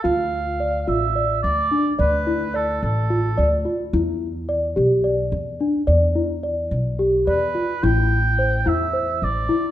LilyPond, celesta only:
\new Staff \with { instrumentName = "Celesta" } { \time 7/8 \key d \dorian \tempo 4 = 108 f'4 d''8 f'8 d''4 d'8 | d''8 e'8 d''4 f'8 d''8 f'8 | e'4 d''8 g'8 d''4 d'8 | d''8 e'8 d''4 g'8 d''8 f'8 |
e'4 c''8 e'8 c''4 e'8 | }